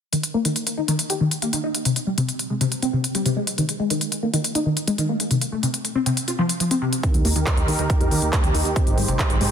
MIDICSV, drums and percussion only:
0, 0, Header, 1, 2, 480
1, 0, Start_track
1, 0, Key_signature, -3, "major"
1, 0, Tempo, 431655
1, 142, Time_signature, 4, 2, 24, 8
1, 10577, End_track
2, 0, Start_track
2, 0, Title_t, "Drums"
2, 141, Note_on_c, 9, 42, 59
2, 253, Note_off_c, 9, 42, 0
2, 261, Note_on_c, 9, 42, 62
2, 372, Note_off_c, 9, 42, 0
2, 501, Note_on_c, 9, 42, 60
2, 612, Note_off_c, 9, 42, 0
2, 621, Note_on_c, 9, 42, 61
2, 732, Note_off_c, 9, 42, 0
2, 741, Note_on_c, 9, 42, 61
2, 852, Note_off_c, 9, 42, 0
2, 981, Note_on_c, 9, 42, 63
2, 1092, Note_off_c, 9, 42, 0
2, 1101, Note_on_c, 9, 42, 64
2, 1212, Note_off_c, 9, 42, 0
2, 1221, Note_on_c, 9, 42, 61
2, 1332, Note_off_c, 9, 42, 0
2, 1461, Note_on_c, 9, 42, 61
2, 1572, Note_off_c, 9, 42, 0
2, 1581, Note_on_c, 9, 42, 60
2, 1692, Note_off_c, 9, 42, 0
2, 1701, Note_on_c, 9, 42, 62
2, 1812, Note_off_c, 9, 42, 0
2, 1941, Note_on_c, 9, 42, 61
2, 2052, Note_off_c, 9, 42, 0
2, 2061, Note_on_c, 9, 42, 59
2, 2172, Note_off_c, 9, 42, 0
2, 2181, Note_on_c, 9, 42, 60
2, 2292, Note_off_c, 9, 42, 0
2, 2421, Note_on_c, 9, 42, 58
2, 2532, Note_off_c, 9, 42, 0
2, 2542, Note_on_c, 9, 42, 61
2, 2653, Note_off_c, 9, 42, 0
2, 2661, Note_on_c, 9, 42, 60
2, 2773, Note_off_c, 9, 42, 0
2, 2902, Note_on_c, 9, 42, 60
2, 3013, Note_off_c, 9, 42, 0
2, 3021, Note_on_c, 9, 42, 59
2, 3132, Note_off_c, 9, 42, 0
2, 3142, Note_on_c, 9, 42, 56
2, 3253, Note_off_c, 9, 42, 0
2, 3381, Note_on_c, 9, 42, 62
2, 3493, Note_off_c, 9, 42, 0
2, 3501, Note_on_c, 9, 42, 58
2, 3612, Note_off_c, 9, 42, 0
2, 3621, Note_on_c, 9, 42, 57
2, 3732, Note_off_c, 9, 42, 0
2, 3861, Note_on_c, 9, 42, 61
2, 3972, Note_off_c, 9, 42, 0
2, 3981, Note_on_c, 9, 42, 58
2, 4092, Note_off_c, 9, 42, 0
2, 4101, Note_on_c, 9, 42, 56
2, 4212, Note_off_c, 9, 42, 0
2, 4341, Note_on_c, 9, 42, 57
2, 4452, Note_off_c, 9, 42, 0
2, 4460, Note_on_c, 9, 42, 58
2, 4572, Note_off_c, 9, 42, 0
2, 4581, Note_on_c, 9, 42, 56
2, 4692, Note_off_c, 9, 42, 0
2, 4822, Note_on_c, 9, 42, 56
2, 4933, Note_off_c, 9, 42, 0
2, 4942, Note_on_c, 9, 42, 59
2, 5053, Note_off_c, 9, 42, 0
2, 5061, Note_on_c, 9, 42, 58
2, 5173, Note_off_c, 9, 42, 0
2, 5301, Note_on_c, 9, 42, 60
2, 5413, Note_off_c, 9, 42, 0
2, 5421, Note_on_c, 9, 42, 59
2, 5533, Note_off_c, 9, 42, 0
2, 5541, Note_on_c, 9, 42, 56
2, 5653, Note_off_c, 9, 42, 0
2, 5782, Note_on_c, 9, 42, 60
2, 5893, Note_off_c, 9, 42, 0
2, 5902, Note_on_c, 9, 42, 53
2, 6013, Note_off_c, 9, 42, 0
2, 6021, Note_on_c, 9, 42, 58
2, 6133, Note_off_c, 9, 42, 0
2, 6261, Note_on_c, 9, 42, 55
2, 6373, Note_off_c, 9, 42, 0
2, 6381, Note_on_c, 9, 42, 55
2, 6493, Note_off_c, 9, 42, 0
2, 6502, Note_on_c, 9, 42, 55
2, 6613, Note_off_c, 9, 42, 0
2, 6741, Note_on_c, 9, 42, 56
2, 6853, Note_off_c, 9, 42, 0
2, 6862, Note_on_c, 9, 42, 60
2, 6973, Note_off_c, 9, 42, 0
2, 6981, Note_on_c, 9, 42, 57
2, 7093, Note_off_c, 9, 42, 0
2, 7222, Note_on_c, 9, 42, 61
2, 7333, Note_off_c, 9, 42, 0
2, 7342, Note_on_c, 9, 42, 59
2, 7453, Note_off_c, 9, 42, 0
2, 7461, Note_on_c, 9, 42, 58
2, 7573, Note_off_c, 9, 42, 0
2, 7702, Note_on_c, 9, 42, 60
2, 7813, Note_off_c, 9, 42, 0
2, 7822, Note_on_c, 9, 36, 109
2, 7822, Note_on_c, 9, 42, 56
2, 7933, Note_off_c, 9, 36, 0
2, 7933, Note_off_c, 9, 42, 0
2, 7942, Note_on_c, 9, 42, 59
2, 8053, Note_off_c, 9, 42, 0
2, 8062, Note_on_c, 9, 46, 97
2, 8173, Note_off_c, 9, 46, 0
2, 8182, Note_on_c, 9, 42, 56
2, 8294, Note_off_c, 9, 42, 0
2, 8302, Note_on_c, 9, 36, 110
2, 8302, Note_on_c, 9, 39, 104
2, 8302, Note_on_c, 9, 42, 56
2, 8413, Note_off_c, 9, 36, 0
2, 8413, Note_off_c, 9, 39, 0
2, 8413, Note_off_c, 9, 42, 0
2, 8423, Note_on_c, 9, 42, 58
2, 8534, Note_off_c, 9, 42, 0
2, 8542, Note_on_c, 9, 46, 93
2, 8654, Note_off_c, 9, 46, 0
2, 8662, Note_on_c, 9, 42, 55
2, 8773, Note_off_c, 9, 42, 0
2, 8782, Note_on_c, 9, 36, 112
2, 8783, Note_on_c, 9, 42, 57
2, 8894, Note_off_c, 9, 36, 0
2, 8894, Note_off_c, 9, 42, 0
2, 8903, Note_on_c, 9, 42, 57
2, 9014, Note_off_c, 9, 42, 0
2, 9022, Note_on_c, 9, 46, 98
2, 9134, Note_off_c, 9, 46, 0
2, 9142, Note_on_c, 9, 42, 58
2, 9254, Note_off_c, 9, 42, 0
2, 9262, Note_on_c, 9, 36, 114
2, 9262, Note_on_c, 9, 39, 104
2, 9262, Note_on_c, 9, 42, 61
2, 9373, Note_off_c, 9, 36, 0
2, 9373, Note_off_c, 9, 39, 0
2, 9373, Note_off_c, 9, 42, 0
2, 9382, Note_on_c, 9, 42, 58
2, 9493, Note_off_c, 9, 42, 0
2, 9502, Note_on_c, 9, 46, 92
2, 9613, Note_off_c, 9, 46, 0
2, 9622, Note_on_c, 9, 42, 58
2, 9733, Note_off_c, 9, 42, 0
2, 9742, Note_on_c, 9, 36, 106
2, 9742, Note_on_c, 9, 42, 59
2, 9853, Note_off_c, 9, 36, 0
2, 9853, Note_off_c, 9, 42, 0
2, 9862, Note_on_c, 9, 42, 62
2, 9973, Note_off_c, 9, 42, 0
2, 9982, Note_on_c, 9, 46, 96
2, 10093, Note_off_c, 9, 46, 0
2, 10102, Note_on_c, 9, 42, 58
2, 10213, Note_off_c, 9, 42, 0
2, 10222, Note_on_c, 9, 36, 106
2, 10222, Note_on_c, 9, 39, 106
2, 10222, Note_on_c, 9, 42, 58
2, 10333, Note_off_c, 9, 36, 0
2, 10334, Note_off_c, 9, 39, 0
2, 10334, Note_off_c, 9, 42, 0
2, 10341, Note_on_c, 9, 42, 59
2, 10453, Note_off_c, 9, 42, 0
2, 10461, Note_on_c, 9, 46, 89
2, 10573, Note_off_c, 9, 46, 0
2, 10577, End_track
0, 0, End_of_file